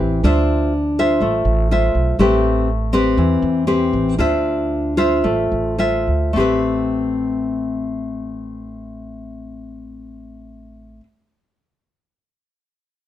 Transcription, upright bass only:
0, 0, Header, 1, 2, 480
1, 0, Start_track
1, 0, Key_signature, 0, "minor"
1, 0, Tempo, 490196
1, 229, Time_signature, 4, 2, 24, 8
1, 3109, Tempo, 516796
1, 5029, Tempo, 558140
1, 5989, Tempo, 575816
1, 11590, End_track
2, 0, Start_track
2, 0, Title_t, "Upright bass"
2, 0, Program_c, 0, 32
2, 0, Note_on_c, 0, 33, 75
2, 214, Note_off_c, 0, 33, 0
2, 230, Note_on_c, 0, 38, 88
2, 1148, Note_off_c, 0, 38, 0
2, 1179, Note_on_c, 0, 33, 85
2, 1405, Note_off_c, 0, 33, 0
2, 1420, Note_on_c, 0, 33, 83
2, 1868, Note_off_c, 0, 33, 0
2, 1907, Note_on_c, 0, 35, 74
2, 2129, Note_off_c, 0, 35, 0
2, 2142, Note_on_c, 0, 33, 84
2, 3069, Note_off_c, 0, 33, 0
2, 3108, Note_on_c, 0, 40, 91
2, 3324, Note_off_c, 0, 40, 0
2, 3340, Note_on_c, 0, 40, 84
2, 3777, Note_off_c, 0, 40, 0
2, 3813, Note_on_c, 0, 33, 82
2, 4033, Note_off_c, 0, 33, 0
2, 4048, Note_on_c, 0, 38, 83
2, 4991, Note_off_c, 0, 38, 0
2, 5028, Note_on_c, 0, 33, 82
2, 5247, Note_off_c, 0, 33, 0
2, 5265, Note_on_c, 0, 33, 75
2, 5710, Note_off_c, 0, 33, 0
2, 5744, Note_on_c, 0, 38, 63
2, 5972, Note_off_c, 0, 38, 0
2, 5985, Note_on_c, 0, 33, 78
2, 9846, Note_off_c, 0, 33, 0
2, 11590, End_track
0, 0, End_of_file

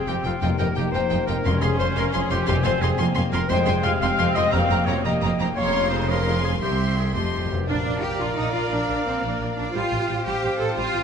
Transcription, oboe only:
0, 0, Header, 1, 2, 480
1, 0, Start_track
1, 0, Key_signature, -4, "minor"
1, 0, Tempo, 342661
1, 594, Time_signature, 6, 3, 24, 8
1, 6349, Tempo, 349650
1, 10670, Key_signature, -2, "major"
1, 11149, Tempo, 342857
1, 15356, End_track
2, 0, Start_track
2, 0, Title_t, "Oboe"
2, 0, Program_c, 0, 68
2, 116, Note_on_c, 0, 67, 71
2, 351, Note_off_c, 0, 67, 0
2, 360, Note_on_c, 0, 65, 73
2, 575, Note_off_c, 0, 65, 0
2, 583, Note_on_c, 0, 65, 71
2, 812, Note_off_c, 0, 65, 0
2, 820, Note_on_c, 0, 70, 81
2, 1060, Note_off_c, 0, 70, 0
2, 1069, Note_on_c, 0, 67, 71
2, 1275, Note_off_c, 0, 67, 0
2, 1284, Note_on_c, 0, 72, 83
2, 1764, Note_off_c, 0, 72, 0
2, 1772, Note_on_c, 0, 70, 77
2, 2265, Note_on_c, 0, 68, 88
2, 2286, Note_off_c, 0, 70, 0
2, 2501, Note_off_c, 0, 68, 0
2, 2510, Note_on_c, 0, 72, 89
2, 2746, Note_off_c, 0, 72, 0
2, 2770, Note_on_c, 0, 70, 91
2, 2874, Note_off_c, 0, 70, 0
2, 2993, Note_on_c, 0, 68, 80
2, 3229, Note_off_c, 0, 68, 0
2, 3235, Note_on_c, 0, 67, 100
2, 3470, Note_off_c, 0, 67, 0
2, 3479, Note_on_c, 0, 67, 95
2, 3700, Note_on_c, 0, 72, 105
2, 3721, Note_off_c, 0, 67, 0
2, 3947, Note_on_c, 0, 68, 88
2, 3968, Note_off_c, 0, 72, 0
2, 4189, Note_off_c, 0, 68, 0
2, 4659, Note_on_c, 0, 70, 108
2, 4896, Note_on_c, 0, 72, 90
2, 4917, Note_off_c, 0, 70, 0
2, 5372, Note_off_c, 0, 72, 0
2, 5380, Note_on_c, 0, 77, 115
2, 5602, Note_off_c, 0, 77, 0
2, 5610, Note_on_c, 0, 77, 103
2, 6092, Note_on_c, 0, 75, 113
2, 6113, Note_off_c, 0, 77, 0
2, 6344, Note_on_c, 0, 77, 99
2, 6365, Note_off_c, 0, 75, 0
2, 6795, Note_on_c, 0, 73, 87
2, 6815, Note_off_c, 0, 77, 0
2, 7029, Note_off_c, 0, 73, 0
2, 7037, Note_on_c, 0, 75, 68
2, 7514, Note_off_c, 0, 75, 0
2, 7758, Note_on_c, 0, 73, 96
2, 8208, Note_off_c, 0, 73, 0
2, 8230, Note_on_c, 0, 72, 85
2, 8474, Note_off_c, 0, 72, 0
2, 8496, Note_on_c, 0, 70, 85
2, 8965, Note_off_c, 0, 70, 0
2, 8973, Note_on_c, 0, 68, 69
2, 9081, Note_off_c, 0, 68, 0
2, 9215, Note_on_c, 0, 67, 70
2, 9687, Note_off_c, 0, 67, 0
2, 9702, Note_on_c, 0, 68, 57
2, 9923, Note_off_c, 0, 68, 0
2, 9932, Note_on_c, 0, 67, 55
2, 10653, Note_off_c, 0, 67, 0
2, 10673, Note_on_c, 0, 77, 61
2, 13500, Note_off_c, 0, 77, 0
2, 13566, Note_on_c, 0, 77, 53
2, 15356, Note_off_c, 0, 77, 0
2, 15356, End_track
0, 0, End_of_file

